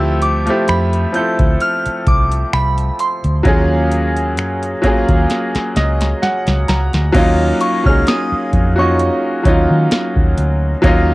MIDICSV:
0, 0, Header, 1, 7, 480
1, 0, Start_track
1, 0, Tempo, 923077
1, 1795, Time_signature, 4, 2, 24, 8
1, 5794, End_track
2, 0, Start_track
2, 0, Title_t, "Synth bell"
2, 0, Program_c, 0, 98
2, 0, Note_on_c, 0, 88, 95
2, 99, Note_off_c, 0, 88, 0
2, 116, Note_on_c, 0, 86, 89
2, 357, Note_on_c, 0, 83, 89
2, 362, Note_off_c, 0, 86, 0
2, 600, Note_on_c, 0, 91, 87
2, 603, Note_off_c, 0, 83, 0
2, 840, Note_on_c, 0, 89, 104
2, 844, Note_off_c, 0, 91, 0
2, 1060, Note_off_c, 0, 89, 0
2, 1081, Note_on_c, 0, 86, 83
2, 1319, Note_on_c, 0, 83, 91
2, 1325, Note_off_c, 0, 86, 0
2, 1562, Note_on_c, 0, 84, 73
2, 1564, Note_off_c, 0, 83, 0
2, 1781, Note_off_c, 0, 84, 0
2, 3958, Note_on_c, 0, 85, 87
2, 4089, Note_off_c, 0, 85, 0
2, 4089, Note_on_c, 0, 89, 96
2, 4200, Note_off_c, 0, 89, 0
2, 4201, Note_on_c, 0, 87, 99
2, 4572, Note_on_c, 0, 85, 77
2, 4578, Note_off_c, 0, 87, 0
2, 5027, Note_off_c, 0, 85, 0
2, 5794, End_track
3, 0, Start_track
3, 0, Title_t, "Celesta"
3, 0, Program_c, 1, 8
3, 3959, Note_on_c, 1, 77, 77
3, 4776, Note_off_c, 1, 77, 0
3, 5794, End_track
4, 0, Start_track
4, 0, Title_t, "Grand piano"
4, 0, Program_c, 2, 0
4, 0, Control_c, 2, 64, 127
4, 0, Note_on_c, 2, 53, 88
4, 0, Note_on_c, 2, 57, 83
4, 0, Note_on_c, 2, 60, 79
4, 0, Note_on_c, 2, 64, 79
4, 0, Note_on_c, 2, 67, 96
4, 201, Note_off_c, 2, 53, 0
4, 203, Note_off_c, 2, 57, 0
4, 206, Note_off_c, 2, 60, 0
4, 209, Note_off_c, 2, 64, 0
4, 212, Note_off_c, 2, 67, 0
4, 237, Note_on_c, 2, 53, 74
4, 244, Note_on_c, 2, 57, 71
4, 249, Note_on_c, 2, 60, 65
4, 256, Note_on_c, 2, 64, 71
4, 261, Note_on_c, 2, 67, 87
4, 558, Note_off_c, 2, 53, 0
4, 561, Note_off_c, 2, 57, 0
4, 564, Note_off_c, 2, 60, 0
4, 567, Note_off_c, 2, 64, 0
4, 569, Note_off_c, 2, 67, 0
4, 585, Note_on_c, 2, 53, 64
4, 591, Note_on_c, 2, 57, 56
4, 598, Note_on_c, 2, 60, 58
4, 603, Note_on_c, 2, 64, 62
4, 609, Note_on_c, 2, 69, 67
4, 1461, Note_off_c, 2, 53, 0
4, 1464, Note_off_c, 2, 57, 0
4, 1467, Note_off_c, 2, 60, 0
4, 1470, Note_off_c, 2, 64, 0
4, 1473, Note_off_c, 2, 69, 0
4, 1785, Note_on_c, 2, 54, 89
4, 1792, Note_on_c, 2, 58, 82
4, 1798, Note_on_c, 2, 61, 79
4, 1800, Control_c, 2, 64, 0
4, 1804, Note_on_c, 2, 65, 83
4, 1810, Note_on_c, 2, 68, 99
4, 1882, Control_c, 2, 64, 127
4, 2443, Note_off_c, 2, 54, 0
4, 2447, Note_off_c, 2, 58, 0
4, 2450, Note_off_c, 2, 61, 0
4, 2453, Note_off_c, 2, 65, 0
4, 2456, Note_off_c, 2, 68, 0
4, 2505, Note_on_c, 2, 54, 81
4, 2512, Note_on_c, 2, 58, 78
4, 2517, Note_on_c, 2, 61, 74
4, 2524, Note_on_c, 2, 65, 75
4, 2530, Note_on_c, 2, 68, 91
4, 2997, Note_on_c, 2, 75, 70
4, 3219, Note_off_c, 2, 75, 0
4, 3236, Note_on_c, 2, 78, 73
4, 3381, Note_off_c, 2, 54, 0
4, 3385, Note_off_c, 2, 58, 0
4, 3387, Note_off_c, 2, 61, 0
4, 3391, Note_off_c, 2, 65, 0
4, 3394, Note_off_c, 2, 68, 0
4, 3459, Note_off_c, 2, 78, 0
4, 3476, Note_on_c, 2, 82, 69
4, 3698, Note_off_c, 2, 82, 0
4, 3705, Note_on_c, 2, 54, 108
4, 3711, Note_on_c, 2, 58, 95
4, 3716, Note_on_c, 2, 61, 97
4, 3720, Control_c, 2, 64, 0
4, 3723, Note_on_c, 2, 63, 97
4, 3729, Note_on_c, 2, 65, 122
4, 3820, Control_c, 2, 64, 127
4, 4040, Note_off_c, 2, 54, 0
4, 4043, Note_off_c, 2, 58, 0
4, 4046, Note_off_c, 2, 61, 0
4, 4049, Note_off_c, 2, 63, 0
4, 4052, Note_off_c, 2, 65, 0
4, 4075, Note_on_c, 2, 54, 67
4, 4081, Note_on_c, 2, 58, 61
4, 4086, Note_on_c, 2, 61, 65
4, 4093, Note_on_c, 2, 63, 64
4, 4099, Note_on_c, 2, 68, 79
4, 4507, Note_off_c, 2, 54, 0
4, 4510, Note_off_c, 2, 58, 0
4, 4513, Note_off_c, 2, 61, 0
4, 4517, Note_off_c, 2, 63, 0
4, 4519, Note_off_c, 2, 68, 0
4, 4554, Note_on_c, 2, 66, 71
4, 4561, Note_on_c, 2, 58, 63
4, 4566, Note_on_c, 2, 61, 64
4, 4572, Note_on_c, 2, 63, 63
4, 4578, Note_on_c, 2, 65, 77
4, 4876, Note_off_c, 2, 66, 0
4, 4879, Note_off_c, 2, 58, 0
4, 4882, Note_off_c, 2, 61, 0
4, 4885, Note_off_c, 2, 63, 0
4, 4888, Note_off_c, 2, 65, 0
4, 4906, Note_on_c, 2, 54, 72
4, 4912, Note_on_c, 2, 58, 65
4, 4918, Note_on_c, 2, 61, 64
4, 4924, Note_on_c, 2, 63, 67
4, 4931, Note_on_c, 2, 65, 82
4, 5564, Note_off_c, 2, 54, 0
4, 5567, Note_off_c, 2, 58, 0
4, 5570, Note_off_c, 2, 61, 0
4, 5573, Note_off_c, 2, 63, 0
4, 5576, Note_off_c, 2, 65, 0
4, 5625, Note_on_c, 2, 54, 110
4, 5632, Note_on_c, 2, 58, 96
4, 5637, Note_on_c, 2, 61, 93
4, 5643, Note_on_c, 2, 63, 98
4, 5650, Note_on_c, 2, 65, 123
4, 5794, Note_off_c, 2, 54, 0
4, 5794, Note_off_c, 2, 58, 0
4, 5794, Note_off_c, 2, 61, 0
4, 5794, Note_off_c, 2, 63, 0
4, 5794, Note_off_c, 2, 65, 0
4, 5794, End_track
5, 0, Start_track
5, 0, Title_t, "Fingered electric bass"
5, 0, Program_c, 3, 33
5, 0, Note_on_c, 3, 38, 99
5, 249, Note_off_c, 3, 38, 0
5, 357, Note_on_c, 3, 41, 95
5, 544, Note_off_c, 3, 41, 0
5, 725, Note_on_c, 3, 38, 83
5, 811, Note_off_c, 3, 38, 0
5, 1076, Note_on_c, 3, 36, 84
5, 1263, Note_off_c, 3, 36, 0
5, 1318, Note_on_c, 3, 36, 88
5, 1504, Note_off_c, 3, 36, 0
5, 1687, Note_on_c, 3, 38, 86
5, 1772, Note_off_c, 3, 38, 0
5, 1796, Note_on_c, 3, 39, 107
5, 2278, Note_off_c, 3, 39, 0
5, 2278, Note_on_c, 3, 42, 96
5, 2464, Note_off_c, 3, 42, 0
5, 2646, Note_on_c, 3, 39, 76
5, 2732, Note_off_c, 3, 39, 0
5, 2997, Note_on_c, 3, 37, 96
5, 3183, Note_off_c, 3, 37, 0
5, 3367, Note_on_c, 3, 37, 91
5, 3452, Note_off_c, 3, 37, 0
5, 3478, Note_on_c, 3, 37, 90
5, 3578, Note_off_c, 3, 37, 0
5, 3607, Note_on_c, 3, 38, 83
5, 3692, Note_off_c, 3, 38, 0
5, 3717, Note_on_c, 3, 39, 111
5, 3903, Note_off_c, 3, 39, 0
5, 4086, Note_on_c, 3, 37, 85
5, 4171, Note_off_c, 3, 37, 0
5, 4436, Note_on_c, 3, 41, 81
5, 4724, Note_off_c, 3, 41, 0
5, 4916, Note_on_c, 3, 39, 87
5, 5017, Note_off_c, 3, 39, 0
5, 5047, Note_on_c, 3, 51, 100
5, 5132, Note_off_c, 3, 51, 0
5, 5286, Note_on_c, 3, 39, 86
5, 5372, Note_off_c, 3, 39, 0
5, 5397, Note_on_c, 3, 38, 91
5, 5583, Note_off_c, 3, 38, 0
5, 5636, Note_on_c, 3, 39, 101
5, 5794, Note_off_c, 3, 39, 0
5, 5794, End_track
6, 0, Start_track
6, 0, Title_t, "Muted fingered electric bass strokes"
6, 967, Note_on_c, 9, 29, 47
6, 1019, Note_off_c, 9, 29, 0
6, 2886, Note_on_c, 9, 29, 44
6, 2938, Note_off_c, 9, 29, 0
6, 4326, Note_on_c, 9, 29, 46
6, 4378, Note_off_c, 9, 29, 0
6, 5794, End_track
7, 0, Start_track
7, 0, Title_t, "Drums"
7, 113, Note_on_c, 9, 42, 66
7, 165, Note_off_c, 9, 42, 0
7, 242, Note_on_c, 9, 42, 48
7, 294, Note_off_c, 9, 42, 0
7, 352, Note_on_c, 9, 42, 69
7, 359, Note_on_c, 9, 26, 117
7, 404, Note_off_c, 9, 42, 0
7, 411, Note_off_c, 9, 26, 0
7, 483, Note_on_c, 9, 42, 52
7, 535, Note_off_c, 9, 42, 0
7, 593, Note_on_c, 9, 42, 55
7, 645, Note_off_c, 9, 42, 0
7, 722, Note_on_c, 9, 42, 47
7, 723, Note_on_c, 9, 36, 98
7, 774, Note_off_c, 9, 42, 0
7, 775, Note_off_c, 9, 36, 0
7, 834, Note_on_c, 9, 42, 66
7, 886, Note_off_c, 9, 42, 0
7, 964, Note_on_c, 9, 42, 48
7, 1016, Note_off_c, 9, 42, 0
7, 1074, Note_on_c, 9, 42, 61
7, 1075, Note_on_c, 9, 36, 94
7, 1126, Note_off_c, 9, 42, 0
7, 1127, Note_off_c, 9, 36, 0
7, 1204, Note_on_c, 9, 42, 61
7, 1256, Note_off_c, 9, 42, 0
7, 1317, Note_on_c, 9, 26, 111
7, 1369, Note_off_c, 9, 26, 0
7, 1444, Note_on_c, 9, 42, 46
7, 1496, Note_off_c, 9, 42, 0
7, 1556, Note_on_c, 9, 42, 67
7, 1608, Note_off_c, 9, 42, 0
7, 1685, Note_on_c, 9, 42, 37
7, 1737, Note_off_c, 9, 42, 0
7, 1794, Note_on_c, 9, 42, 53
7, 1795, Note_on_c, 9, 36, 111
7, 1846, Note_off_c, 9, 42, 0
7, 1847, Note_off_c, 9, 36, 0
7, 2035, Note_on_c, 9, 42, 66
7, 2087, Note_off_c, 9, 42, 0
7, 2166, Note_on_c, 9, 42, 49
7, 2218, Note_off_c, 9, 42, 0
7, 2274, Note_on_c, 9, 42, 63
7, 2281, Note_on_c, 9, 26, 118
7, 2326, Note_off_c, 9, 42, 0
7, 2333, Note_off_c, 9, 26, 0
7, 2406, Note_on_c, 9, 42, 54
7, 2458, Note_off_c, 9, 42, 0
7, 2515, Note_on_c, 9, 36, 83
7, 2515, Note_on_c, 9, 42, 56
7, 2567, Note_off_c, 9, 36, 0
7, 2567, Note_off_c, 9, 42, 0
7, 2644, Note_on_c, 9, 42, 47
7, 2645, Note_on_c, 9, 36, 91
7, 2696, Note_off_c, 9, 42, 0
7, 2697, Note_off_c, 9, 36, 0
7, 2755, Note_on_c, 9, 42, 68
7, 2759, Note_on_c, 9, 38, 53
7, 2807, Note_off_c, 9, 42, 0
7, 2811, Note_off_c, 9, 38, 0
7, 2885, Note_on_c, 9, 42, 47
7, 2889, Note_on_c, 9, 38, 52
7, 2937, Note_off_c, 9, 42, 0
7, 2941, Note_off_c, 9, 38, 0
7, 2996, Note_on_c, 9, 42, 72
7, 3000, Note_on_c, 9, 38, 70
7, 3048, Note_off_c, 9, 42, 0
7, 3052, Note_off_c, 9, 38, 0
7, 3124, Note_on_c, 9, 42, 74
7, 3130, Note_on_c, 9, 38, 59
7, 3176, Note_off_c, 9, 42, 0
7, 3182, Note_off_c, 9, 38, 0
7, 3241, Note_on_c, 9, 38, 81
7, 3293, Note_off_c, 9, 38, 0
7, 3364, Note_on_c, 9, 42, 47
7, 3370, Note_on_c, 9, 38, 73
7, 3416, Note_off_c, 9, 42, 0
7, 3422, Note_off_c, 9, 38, 0
7, 3476, Note_on_c, 9, 42, 62
7, 3481, Note_on_c, 9, 38, 97
7, 3528, Note_off_c, 9, 42, 0
7, 3533, Note_off_c, 9, 38, 0
7, 3605, Note_on_c, 9, 42, 41
7, 3610, Note_on_c, 9, 38, 80
7, 3657, Note_off_c, 9, 42, 0
7, 3662, Note_off_c, 9, 38, 0
7, 3715, Note_on_c, 9, 36, 116
7, 3716, Note_on_c, 9, 42, 55
7, 3716, Note_on_c, 9, 49, 91
7, 3767, Note_off_c, 9, 36, 0
7, 3768, Note_off_c, 9, 42, 0
7, 3768, Note_off_c, 9, 49, 0
7, 3956, Note_on_c, 9, 42, 69
7, 4008, Note_off_c, 9, 42, 0
7, 4085, Note_on_c, 9, 36, 99
7, 4137, Note_off_c, 9, 36, 0
7, 4196, Note_on_c, 9, 42, 70
7, 4203, Note_on_c, 9, 38, 119
7, 4248, Note_off_c, 9, 42, 0
7, 4255, Note_off_c, 9, 38, 0
7, 4435, Note_on_c, 9, 36, 81
7, 4436, Note_on_c, 9, 42, 53
7, 4487, Note_off_c, 9, 36, 0
7, 4488, Note_off_c, 9, 42, 0
7, 4677, Note_on_c, 9, 42, 65
7, 4729, Note_off_c, 9, 42, 0
7, 4915, Note_on_c, 9, 36, 89
7, 4916, Note_on_c, 9, 42, 75
7, 4967, Note_off_c, 9, 36, 0
7, 4968, Note_off_c, 9, 42, 0
7, 5155, Note_on_c, 9, 42, 65
7, 5159, Note_on_c, 9, 38, 116
7, 5207, Note_off_c, 9, 42, 0
7, 5211, Note_off_c, 9, 38, 0
7, 5285, Note_on_c, 9, 36, 90
7, 5337, Note_off_c, 9, 36, 0
7, 5396, Note_on_c, 9, 42, 64
7, 5448, Note_off_c, 9, 42, 0
7, 5635, Note_on_c, 9, 36, 116
7, 5636, Note_on_c, 9, 42, 59
7, 5687, Note_off_c, 9, 36, 0
7, 5688, Note_off_c, 9, 42, 0
7, 5794, End_track
0, 0, End_of_file